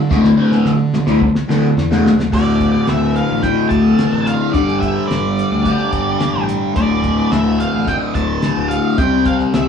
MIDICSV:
0, 0, Header, 1, 6, 480
1, 0, Start_track
1, 0, Key_signature, -1, "minor"
1, 0, Tempo, 554529
1, 92, Time_signature, 4, 2, 24, 8
1, 8382, End_track
2, 0, Start_track
2, 0, Title_t, "Lead electric guitar"
2, 0, Program_c, 0, 29
2, 2026, Note_on_c, 0, 74, 78
2, 2463, Note_off_c, 0, 74, 0
2, 2509, Note_on_c, 0, 76, 79
2, 2732, Note_off_c, 0, 76, 0
2, 2735, Note_on_c, 0, 77, 87
2, 2965, Note_on_c, 0, 79, 96
2, 2977, Note_off_c, 0, 77, 0
2, 3192, Note_off_c, 0, 79, 0
2, 3195, Note_on_c, 0, 81, 91
2, 3695, Note_off_c, 0, 81, 0
2, 3697, Note_on_c, 0, 77, 88
2, 3915, Note_off_c, 0, 77, 0
2, 3923, Note_on_c, 0, 74, 78
2, 4148, Note_off_c, 0, 74, 0
2, 4158, Note_on_c, 0, 76, 85
2, 4387, Note_off_c, 0, 76, 0
2, 4390, Note_on_c, 0, 74, 62
2, 5565, Note_off_c, 0, 74, 0
2, 5855, Note_on_c, 0, 74, 82
2, 6299, Note_off_c, 0, 74, 0
2, 6335, Note_on_c, 0, 76, 76
2, 6576, Note_off_c, 0, 76, 0
2, 6579, Note_on_c, 0, 77, 89
2, 6822, Note_off_c, 0, 77, 0
2, 6823, Note_on_c, 0, 79, 101
2, 6886, Note_off_c, 0, 79, 0
2, 7053, Note_on_c, 0, 81, 101
2, 7499, Note_off_c, 0, 81, 0
2, 7520, Note_on_c, 0, 77, 92
2, 7773, Note_off_c, 0, 77, 0
2, 7774, Note_on_c, 0, 79, 94
2, 7996, Note_off_c, 0, 79, 0
2, 8017, Note_on_c, 0, 77, 89
2, 8081, Note_off_c, 0, 77, 0
2, 8263, Note_on_c, 0, 76, 69
2, 8382, Note_off_c, 0, 76, 0
2, 8382, End_track
3, 0, Start_track
3, 0, Title_t, "Distorted electric guitar"
3, 0, Program_c, 1, 30
3, 83, Note_on_c, 1, 38, 82
3, 88, Note_on_c, 1, 45, 90
3, 92, Note_on_c, 1, 50, 96
3, 243, Note_off_c, 1, 38, 0
3, 245, Note_off_c, 1, 45, 0
3, 247, Note_off_c, 1, 50, 0
3, 312, Note_on_c, 1, 38, 57
3, 320, Note_on_c, 1, 45, 67
3, 327, Note_on_c, 1, 50, 75
3, 437, Note_off_c, 1, 50, 0
3, 441, Note_off_c, 1, 38, 0
3, 445, Note_off_c, 1, 45, 0
3, 448, Note_on_c, 1, 50, 93
3, 454, Note_on_c, 1, 38, 80
3, 454, Note_on_c, 1, 45, 84
3, 604, Note_off_c, 1, 50, 0
3, 607, Note_off_c, 1, 38, 0
3, 607, Note_off_c, 1, 45, 0
3, 919, Note_on_c, 1, 50, 97
3, 923, Note_on_c, 1, 45, 78
3, 929, Note_on_c, 1, 38, 71
3, 1037, Note_off_c, 1, 38, 0
3, 1041, Note_off_c, 1, 45, 0
3, 1041, Note_off_c, 1, 50, 0
3, 1281, Note_on_c, 1, 38, 82
3, 1286, Note_on_c, 1, 45, 99
3, 1294, Note_on_c, 1, 50, 101
3, 1440, Note_off_c, 1, 38, 0
3, 1443, Note_off_c, 1, 45, 0
3, 1446, Note_off_c, 1, 50, 0
3, 1651, Note_on_c, 1, 50, 87
3, 1655, Note_on_c, 1, 45, 77
3, 1660, Note_on_c, 1, 38, 69
3, 1805, Note_off_c, 1, 50, 0
3, 1807, Note_off_c, 1, 45, 0
3, 1809, Note_off_c, 1, 38, 0
3, 2002, Note_on_c, 1, 38, 87
3, 2012, Note_on_c, 1, 45, 81
3, 2018, Note_on_c, 1, 50, 87
3, 2945, Note_off_c, 1, 38, 0
3, 2954, Note_off_c, 1, 45, 0
3, 2955, Note_on_c, 1, 38, 69
3, 2957, Note_off_c, 1, 50, 0
3, 2968, Note_on_c, 1, 45, 67
3, 2980, Note_on_c, 1, 50, 72
3, 3906, Note_off_c, 1, 38, 0
3, 3913, Note_off_c, 1, 45, 0
3, 3915, Note_off_c, 1, 50, 0
3, 3917, Note_on_c, 1, 43, 72
3, 3926, Note_on_c, 1, 50, 84
3, 3935, Note_on_c, 1, 55, 89
3, 4862, Note_off_c, 1, 43, 0
3, 4872, Note_off_c, 1, 50, 0
3, 4872, Note_on_c, 1, 43, 65
3, 4877, Note_off_c, 1, 55, 0
3, 4883, Note_on_c, 1, 50, 64
3, 4892, Note_on_c, 1, 55, 76
3, 5823, Note_off_c, 1, 43, 0
3, 5826, Note_on_c, 1, 38, 71
3, 5832, Note_off_c, 1, 50, 0
3, 5836, Note_off_c, 1, 55, 0
3, 5841, Note_on_c, 1, 45, 97
3, 5844, Note_on_c, 1, 50, 85
3, 6784, Note_off_c, 1, 38, 0
3, 6792, Note_off_c, 1, 45, 0
3, 6793, Note_off_c, 1, 50, 0
3, 6800, Note_on_c, 1, 38, 70
3, 6809, Note_on_c, 1, 45, 73
3, 6822, Note_on_c, 1, 50, 76
3, 7751, Note_off_c, 1, 38, 0
3, 7756, Note_off_c, 1, 45, 0
3, 7763, Note_off_c, 1, 50, 0
3, 7769, Note_on_c, 1, 48, 79
3, 7778, Note_on_c, 1, 55, 90
3, 7792, Note_on_c, 1, 60, 84
3, 8382, Note_off_c, 1, 48, 0
3, 8382, Note_off_c, 1, 55, 0
3, 8382, Note_off_c, 1, 60, 0
3, 8382, End_track
4, 0, Start_track
4, 0, Title_t, "Fingered electric bass"
4, 0, Program_c, 2, 33
4, 0, Note_on_c, 2, 50, 93
4, 97, Note_on_c, 2, 38, 94
4, 110, Note_off_c, 2, 50, 0
4, 276, Note_off_c, 2, 38, 0
4, 564, Note_on_c, 2, 50, 93
4, 919, Note_on_c, 2, 38, 84
4, 932, Note_off_c, 2, 50, 0
4, 1104, Note_off_c, 2, 38, 0
4, 1291, Note_on_c, 2, 50, 84
4, 1472, Note_off_c, 2, 50, 0
4, 1528, Note_on_c, 2, 40, 87
4, 1743, Note_off_c, 2, 40, 0
4, 1766, Note_on_c, 2, 38, 80
4, 1982, Note_off_c, 2, 38, 0
4, 2015, Note_on_c, 2, 38, 90
4, 2376, Note_off_c, 2, 38, 0
4, 2493, Note_on_c, 2, 38, 84
4, 2763, Note_off_c, 2, 38, 0
4, 2853, Note_on_c, 2, 33, 73
4, 3032, Note_off_c, 2, 33, 0
4, 3210, Note_on_c, 2, 38, 96
4, 3391, Note_off_c, 2, 38, 0
4, 3563, Note_on_c, 2, 33, 74
4, 3746, Note_off_c, 2, 33, 0
4, 3933, Note_on_c, 2, 31, 91
4, 4295, Note_off_c, 2, 31, 0
4, 4415, Note_on_c, 2, 31, 87
4, 4685, Note_off_c, 2, 31, 0
4, 4770, Note_on_c, 2, 38, 84
4, 4951, Note_off_c, 2, 38, 0
4, 5126, Note_on_c, 2, 31, 94
4, 5309, Note_off_c, 2, 31, 0
4, 5483, Note_on_c, 2, 33, 77
4, 5667, Note_off_c, 2, 33, 0
4, 5859, Note_on_c, 2, 26, 93
4, 6219, Note_off_c, 2, 26, 0
4, 6328, Note_on_c, 2, 26, 100
4, 6602, Note_off_c, 2, 26, 0
4, 6704, Note_on_c, 2, 33, 87
4, 6881, Note_off_c, 2, 33, 0
4, 7052, Note_on_c, 2, 26, 102
4, 7234, Note_off_c, 2, 26, 0
4, 7412, Note_on_c, 2, 26, 80
4, 7594, Note_off_c, 2, 26, 0
4, 7773, Note_on_c, 2, 36, 92
4, 8136, Note_off_c, 2, 36, 0
4, 8256, Note_on_c, 2, 36, 90
4, 8382, Note_off_c, 2, 36, 0
4, 8382, End_track
5, 0, Start_track
5, 0, Title_t, "Muted distorted electric guitar strokes"
5, 811, Note_on_c, 9, 29, 39
5, 897, Note_off_c, 9, 29, 0
5, 1048, Note_on_c, 9, 29, 41
5, 1134, Note_off_c, 9, 29, 0
5, 1886, Note_on_c, 9, 29, 53
5, 1972, Note_off_c, 9, 29, 0
5, 8382, End_track
6, 0, Start_track
6, 0, Title_t, "Drums"
6, 94, Note_on_c, 9, 36, 126
6, 97, Note_on_c, 9, 38, 72
6, 181, Note_off_c, 9, 36, 0
6, 183, Note_off_c, 9, 38, 0
6, 211, Note_on_c, 9, 38, 51
6, 297, Note_off_c, 9, 38, 0
6, 448, Note_on_c, 9, 38, 55
6, 535, Note_off_c, 9, 38, 0
6, 566, Note_on_c, 9, 38, 64
6, 653, Note_off_c, 9, 38, 0
6, 810, Note_on_c, 9, 38, 66
6, 896, Note_off_c, 9, 38, 0
6, 925, Note_on_c, 9, 38, 67
6, 1012, Note_off_c, 9, 38, 0
6, 1050, Note_on_c, 9, 36, 106
6, 1137, Note_off_c, 9, 36, 0
6, 1172, Note_on_c, 9, 38, 75
6, 1259, Note_off_c, 9, 38, 0
6, 1300, Note_on_c, 9, 38, 96
6, 1386, Note_off_c, 9, 38, 0
6, 1541, Note_on_c, 9, 38, 89
6, 1627, Note_off_c, 9, 38, 0
6, 1661, Note_on_c, 9, 38, 88
6, 1747, Note_off_c, 9, 38, 0
6, 1787, Note_on_c, 9, 38, 103
6, 1874, Note_off_c, 9, 38, 0
6, 1900, Note_on_c, 9, 38, 90
6, 1986, Note_off_c, 9, 38, 0
6, 2013, Note_on_c, 9, 36, 109
6, 2020, Note_on_c, 9, 49, 93
6, 2100, Note_off_c, 9, 36, 0
6, 2106, Note_off_c, 9, 49, 0
6, 2251, Note_on_c, 9, 36, 77
6, 2256, Note_on_c, 9, 42, 52
6, 2337, Note_off_c, 9, 36, 0
6, 2343, Note_off_c, 9, 42, 0
6, 2487, Note_on_c, 9, 42, 67
6, 2489, Note_on_c, 9, 38, 99
6, 2573, Note_off_c, 9, 42, 0
6, 2575, Note_off_c, 9, 38, 0
6, 2734, Note_on_c, 9, 42, 51
6, 2820, Note_off_c, 9, 42, 0
6, 2970, Note_on_c, 9, 36, 81
6, 2972, Note_on_c, 9, 42, 78
6, 3056, Note_off_c, 9, 36, 0
6, 3059, Note_off_c, 9, 42, 0
6, 3209, Note_on_c, 9, 36, 78
6, 3209, Note_on_c, 9, 42, 58
6, 3295, Note_off_c, 9, 42, 0
6, 3296, Note_off_c, 9, 36, 0
6, 3452, Note_on_c, 9, 42, 74
6, 3454, Note_on_c, 9, 38, 99
6, 3539, Note_off_c, 9, 42, 0
6, 3541, Note_off_c, 9, 38, 0
6, 3696, Note_on_c, 9, 42, 61
6, 3783, Note_off_c, 9, 42, 0
6, 3930, Note_on_c, 9, 36, 113
6, 3932, Note_on_c, 9, 42, 86
6, 4017, Note_off_c, 9, 36, 0
6, 4018, Note_off_c, 9, 42, 0
6, 4057, Note_on_c, 9, 38, 30
6, 4143, Note_off_c, 9, 38, 0
6, 4171, Note_on_c, 9, 36, 81
6, 4177, Note_on_c, 9, 42, 58
6, 4258, Note_off_c, 9, 36, 0
6, 4263, Note_off_c, 9, 42, 0
6, 4421, Note_on_c, 9, 42, 73
6, 4423, Note_on_c, 9, 38, 98
6, 4508, Note_off_c, 9, 42, 0
6, 4509, Note_off_c, 9, 38, 0
6, 4664, Note_on_c, 9, 42, 59
6, 4751, Note_off_c, 9, 42, 0
6, 4893, Note_on_c, 9, 36, 78
6, 4895, Note_on_c, 9, 42, 78
6, 4979, Note_off_c, 9, 36, 0
6, 4981, Note_off_c, 9, 42, 0
6, 5130, Note_on_c, 9, 42, 64
6, 5131, Note_on_c, 9, 36, 81
6, 5216, Note_off_c, 9, 42, 0
6, 5217, Note_off_c, 9, 36, 0
6, 5370, Note_on_c, 9, 42, 68
6, 5372, Note_on_c, 9, 38, 94
6, 5457, Note_off_c, 9, 42, 0
6, 5459, Note_off_c, 9, 38, 0
6, 5616, Note_on_c, 9, 42, 64
6, 5702, Note_off_c, 9, 42, 0
6, 5852, Note_on_c, 9, 42, 81
6, 5853, Note_on_c, 9, 36, 114
6, 5938, Note_off_c, 9, 42, 0
6, 5939, Note_off_c, 9, 36, 0
6, 6092, Note_on_c, 9, 36, 78
6, 6092, Note_on_c, 9, 42, 54
6, 6179, Note_off_c, 9, 36, 0
6, 6179, Note_off_c, 9, 42, 0
6, 6334, Note_on_c, 9, 42, 72
6, 6336, Note_on_c, 9, 38, 101
6, 6421, Note_off_c, 9, 42, 0
6, 6423, Note_off_c, 9, 38, 0
6, 6581, Note_on_c, 9, 42, 54
6, 6667, Note_off_c, 9, 42, 0
6, 6814, Note_on_c, 9, 36, 75
6, 6817, Note_on_c, 9, 42, 78
6, 6900, Note_off_c, 9, 36, 0
6, 6904, Note_off_c, 9, 42, 0
6, 7053, Note_on_c, 9, 36, 83
6, 7055, Note_on_c, 9, 42, 54
6, 7140, Note_off_c, 9, 36, 0
6, 7142, Note_off_c, 9, 42, 0
6, 7292, Note_on_c, 9, 42, 69
6, 7293, Note_on_c, 9, 38, 100
6, 7378, Note_off_c, 9, 42, 0
6, 7380, Note_off_c, 9, 38, 0
6, 7539, Note_on_c, 9, 42, 65
6, 7625, Note_off_c, 9, 42, 0
6, 7774, Note_on_c, 9, 36, 120
6, 7774, Note_on_c, 9, 42, 87
6, 7860, Note_off_c, 9, 36, 0
6, 7860, Note_off_c, 9, 42, 0
6, 8012, Note_on_c, 9, 36, 82
6, 8012, Note_on_c, 9, 42, 57
6, 8099, Note_off_c, 9, 36, 0
6, 8099, Note_off_c, 9, 42, 0
6, 8132, Note_on_c, 9, 38, 29
6, 8218, Note_off_c, 9, 38, 0
6, 8256, Note_on_c, 9, 42, 83
6, 8258, Note_on_c, 9, 38, 105
6, 8343, Note_off_c, 9, 42, 0
6, 8345, Note_off_c, 9, 38, 0
6, 8382, End_track
0, 0, End_of_file